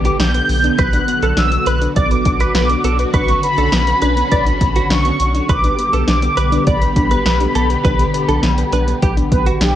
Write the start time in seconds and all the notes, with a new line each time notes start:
Already playing: B1 D3 B3 G4 D6
0.05 G4 B4, closed hi-hat
0.20 B1 D4 G6, snare, closed hi-hat
0.34 B3, closed hi-hat
0.49 B1, open hi-hat
0.64 D4, closed hi-hat
0.78 B1 F#4 B4 F#6, kick, closed hi-hat
0.93 D4, closed hi-hat
1.08 B3, closed hi-hat
1.23 B1 A4 B4, closed hi-hat
1.37 B1 D4 E6, snare, closed hi-hat
1.52 B3, closed hi-hat
1.66 B1 B4 F#6, closed hi-hat
1.82 D4, closed hi-hat
1.96 B1 B3 D5 D6, kick, closed hi-hat
2.11 B4, closed hi-hat
2.25 B1 D4, kick, closed hi-hat
2.40 B3 B4, closed hi-hat
2.55 B1 B4 D6, snare, closed hi-hat
2.69 D4, closed hi-hat
2.84 B1 B3 A4, closed hi-hat
2.99 B4, closed hi-hat
3.14 B1 C#4 D4 B4 C#6, kick, closed hi-hat
3.28 B3, closed hi-hat
3.43 B4 B5, closed hi-hat
3.58 B1 D4 A4, closed hi-hat
3.72 B1 B3, snare, closed hi-hat
3.87 B4, closed hi-hat
4.02 B1 D4 B4, closed hi-hat
4.17 B3, closed hi-hat
4.31 B1 B4 D5, kick, closed hi-hat
4.46 D4, closed hi-hat
4.61 B1 B3, kick, closed hi-hat
4.76 F#4 B4, closed hi-hat
4.90 B1 D4 C#6, snare, closed hi-hat
5.05 B3, closed hi-hat
5.20 B1, closed hi-hat
5.35 D4, closed hi-hat
5.49 B1 D3 B3 G4 B4 D6, kick, closed hi-hat
5.64 D4, closed hi-hat
5.79 B3, closed hi-hat
5.93 B1 A4 B4, closed hi-hat
6.08 B1 D4 D6, snare, closed hi-hat
6.22 B3, closed hi-hat
6.37 B1 B4, closed hi-hat
6.52 D4, closed hi-hat
6.67 B1 B3 D5 B5, kick, closed hi-hat
6.82 B4, closed hi-hat
6.96 B1 D4, kick, closed hi-hat
7.11 B3 B4, closed hi-hat
7.26 B1 B4, snare, closed hi-hat
7.40 D4, closed hi-hat
7.55 B1 B3 A4, closed hi-hat
7.69 B4, closed hi-hat
7.84 B1 D4 B4, kick, closed hi-hat
7.99 B3, closed hi-hat
8.14 B4, closed hi-hat
8.28 B1 D4 A4, closed hi-hat
8.43 B1 B3, snare, closed hi-hat
8.58 B4, closed hi-hat
8.72 B1 D4 B4, closed hi-hat
8.88 B3, closed hi-hat
9.02 B1 G4 B4, kick, closed hi-hat
9.17 D4, closed hi-hat
9.31 B1 B3 B4, kick, closed hi-hat
9.46 F#4 B4, closed hi-hat
9.61 B1 D4 G4, snare, closed hi-hat